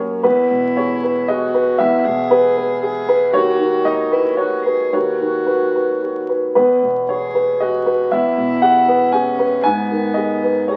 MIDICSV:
0, 0, Header, 1, 3, 480
1, 0, Start_track
1, 0, Tempo, 537634
1, 207, Time_signature, 3, 2, 24, 8
1, 685, Tempo, 515464
1, 4045, Tempo, 540541
1, 6445, Tempo, 515464
1, 9878, End_track
2, 0, Start_track
2, 0, Title_t, "Grand piano"
2, 0, Program_c, 0, 0
2, 0, Control_c, 0, 64, 127
2, 0, Note_on_c, 0, 42, 76
2, 0, Note_on_c, 0, 58, 59
2, 0, Note_on_c, 0, 70, 62
2, 0, Note_on_c, 0, 73, 64
2, 0, Note_on_c, 0, 80, 63
2, 116, Note_off_c, 0, 70, 0
2, 172, Note_off_c, 0, 42, 0
2, 209, Note_off_c, 0, 73, 0
2, 209, Note_on_c, 0, 71, 83
2, 214, Note_on_c, 0, 40, 66
2, 225, Control_c, 0, 64, 0
2, 226, Note_off_c, 0, 80, 0
2, 228, Note_off_c, 0, 58, 0
2, 396, Control_c, 0, 64, 127
2, 453, Note_on_c, 0, 47, 47
2, 652, Note_off_c, 0, 71, 0
2, 686, Note_on_c, 0, 73, 79
2, 694, Note_on_c, 0, 68, 53
2, 834, Note_off_c, 0, 47, 0
2, 935, Note_on_c, 0, 71, 54
2, 1076, Note_off_c, 0, 68, 0
2, 1134, Note_off_c, 0, 73, 0
2, 1165, Note_on_c, 0, 75, 97
2, 1173, Note_on_c, 0, 68, 61
2, 1314, Note_off_c, 0, 71, 0
2, 1407, Note_on_c, 0, 71, 63
2, 1553, Note_off_c, 0, 68, 0
2, 1612, Note_off_c, 0, 75, 0
2, 1613, Note_off_c, 0, 40, 0
2, 1632, Note_on_c, 0, 76, 105
2, 1645, Note_on_c, 0, 40, 76
2, 1665, Control_c, 0, 64, 0
2, 1791, Note_off_c, 0, 71, 0
2, 1792, Control_c, 0, 64, 127
2, 1892, Note_on_c, 0, 47, 60
2, 2082, Note_off_c, 0, 76, 0
2, 2120, Note_on_c, 0, 71, 87
2, 2136, Note_on_c, 0, 68, 64
2, 2269, Note_off_c, 0, 47, 0
2, 2354, Note_off_c, 0, 71, 0
2, 2368, Note_on_c, 0, 71, 66
2, 2509, Note_off_c, 0, 68, 0
2, 2605, Note_on_c, 0, 68, 69
2, 2744, Note_off_c, 0, 71, 0
2, 2845, Note_on_c, 0, 71, 77
2, 2982, Note_off_c, 0, 68, 0
2, 3036, Note_off_c, 0, 40, 0
2, 3076, Note_on_c, 0, 73, 107
2, 3078, Note_off_c, 0, 71, 0
2, 3080, Note_on_c, 0, 39, 77
2, 3091, Control_c, 0, 64, 0
2, 3214, Control_c, 0, 64, 127
2, 3317, Note_on_c, 0, 51, 59
2, 3521, Note_off_c, 0, 73, 0
2, 3555, Note_on_c, 0, 75, 102
2, 3560, Note_on_c, 0, 66, 60
2, 3702, Note_off_c, 0, 51, 0
2, 3808, Note_on_c, 0, 71, 57
2, 3948, Note_off_c, 0, 66, 0
2, 4011, Note_off_c, 0, 75, 0
2, 4039, Note_on_c, 0, 73, 83
2, 4050, Note_on_c, 0, 66, 53
2, 4192, Note_off_c, 0, 71, 0
2, 4297, Note_on_c, 0, 71, 54
2, 4432, Note_off_c, 0, 66, 0
2, 4490, Note_off_c, 0, 73, 0
2, 4495, Note_off_c, 0, 39, 0
2, 4538, Note_on_c, 0, 73, 81
2, 4541, Note_on_c, 0, 39, 57
2, 4544, Control_c, 0, 64, 0
2, 4680, Note_off_c, 0, 71, 0
2, 4692, Control_c, 0, 64, 127
2, 4782, Note_on_c, 0, 51, 41
2, 4983, Note_off_c, 0, 73, 0
2, 5013, Note_on_c, 0, 71, 51
2, 5023, Note_on_c, 0, 66, 47
2, 5162, Note_off_c, 0, 51, 0
2, 5257, Note_off_c, 0, 71, 0
2, 5270, Note_on_c, 0, 71, 45
2, 5403, Note_off_c, 0, 66, 0
2, 5515, Note_on_c, 0, 66, 42
2, 5647, Note_off_c, 0, 71, 0
2, 5747, Note_on_c, 0, 71, 43
2, 5889, Note_off_c, 0, 66, 0
2, 5946, Note_off_c, 0, 39, 0
2, 5965, Note_off_c, 0, 71, 0
2, 5978, Note_on_c, 0, 71, 79
2, 5986, Note_on_c, 0, 40, 60
2, 5991, Control_c, 0, 64, 0
2, 6130, Control_c, 0, 64, 127
2, 6221, Note_on_c, 0, 47, 47
2, 6414, Note_off_c, 0, 71, 0
2, 6455, Note_on_c, 0, 73, 77
2, 6460, Note_on_c, 0, 68, 48
2, 6595, Note_off_c, 0, 47, 0
2, 6696, Note_on_c, 0, 71, 54
2, 6837, Note_off_c, 0, 68, 0
2, 6897, Note_off_c, 0, 73, 0
2, 6934, Note_on_c, 0, 75, 79
2, 6936, Note_on_c, 0, 68, 53
2, 7075, Note_off_c, 0, 71, 0
2, 7175, Note_on_c, 0, 71, 57
2, 7315, Note_off_c, 0, 68, 0
2, 7374, Note_off_c, 0, 40, 0
2, 7376, Note_off_c, 0, 75, 0
2, 7411, Note_on_c, 0, 76, 89
2, 7412, Note_on_c, 0, 40, 64
2, 7422, Control_c, 0, 64, 0
2, 7552, Note_off_c, 0, 71, 0
2, 7564, Control_c, 0, 64, 127
2, 7653, Note_on_c, 0, 47, 54
2, 7847, Note_off_c, 0, 76, 0
2, 7879, Note_on_c, 0, 78, 96
2, 7886, Note_on_c, 0, 68, 58
2, 8024, Note_off_c, 0, 47, 0
2, 8125, Note_on_c, 0, 71, 60
2, 8257, Note_off_c, 0, 68, 0
2, 8315, Note_off_c, 0, 78, 0
2, 8349, Note_on_c, 0, 80, 94
2, 8365, Note_on_c, 0, 68, 62
2, 8496, Note_off_c, 0, 71, 0
2, 8599, Note_on_c, 0, 71, 63
2, 8737, Note_off_c, 0, 68, 0
2, 8789, Note_off_c, 0, 40, 0
2, 8791, Note_off_c, 0, 80, 0
2, 8825, Note_on_c, 0, 80, 102
2, 8831, Note_off_c, 0, 71, 0
2, 8841, Note_on_c, 0, 44, 68
2, 8842, Control_c, 0, 64, 0
2, 8977, Control_c, 0, 64, 127
2, 9080, Note_on_c, 0, 51, 52
2, 9273, Note_off_c, 0, 80, 0
2, 9297, Note_on_c, 0, 75, 89
2, 9325, Note_on_c, 0, 68, 54
2, 9461, Note_off_c, 0, 51, 0
2, 9574, Note_on_c, 0, 71, 51
2, 9710, Note_off_c, 0, 68, 0
2, 9761, Note_off_c, 0, 75, 0
2, 9797, Note_on_c, 0, 73, 77
2, 9824, Note_on_c, 0, 68, 50
2, 9878, Note_off_c, 0, 44, 0
2, 9878, Note_off_c, 0, 68, 0
2, 9878, Note_off_c, 0, 71, 0
2, 9878, Note_off_c, 0, 73, 0
2, 9878, End_track
3, 0, Start_track
3, 0, Title_t, "Cello"
3, 0, Program_c, 1, 42
3, 209, Note_on_c, 1, 64, 75
3, 1167, Note_on_c, 1, 66, 76
3, 1181, Note_off_c, 1, 64, 0
3, 1643, Note_on_c, 1, 64, 82
3, 1656, Note_off_c, 1, 66, 0
3, 1875, Note_on_c, 1, 68, 91
3, 1889, Note_off_c, 1, 64, 0
3, 2593, Note_off_c, 1, 68, 0
3, 2612, Note_on_c, 1, 68, 99
3, 3071, Note_off_c, 1, 68, 0
3, 3082, Note_on_c, 1, 66, 92
3, 3567, Note_on_c, 1, 63, 78
3, 3581, Note_off_c, 1, 66, 0
3, 3811, Note_on_c, 1, 64, 66
3, 3825, Note_off_c, 1, 63, 0
3, 4051, Note_off_c, 1, 64, 0
3, 4059, Note_on_c, 1, 66, 69
3, 4286, Note_off_c, 1, 66, 0
3, 4299, Note_on_c, 1, 68, 65
3, 4538, Note_on_c, 1, 66, 65
3, 4552, Note_off_c, 1, 68, 0
3, 5740, Note_off_c, 1, 66, 0
3, 6463, Note_on_c, 1, 68, 70
3, 6947, Note_on_c, 1, 66, 69
3, 6961, Note_off_c, 1, 68, 0
3, 7423, Note_on_c, 1, 64, 80
3, 7437, Note_off_c, 1, 66, 0
3, 8349, Note_on_c, 1, 61, 81
3, 8363, Note_off_c, 1, 64, 0
3, 8814, Note_on_c, 1, 59, 71
3, 8828, Note_off_c, 1, 61, 0
3, 9796, Note_off_c, 1, 59, 0
3, 9803, Note_on_c, 1, 63, 65
3, 9878, Note_off_c, 1, 63, 0
3, 9878, End_track
0, 0, End_of_file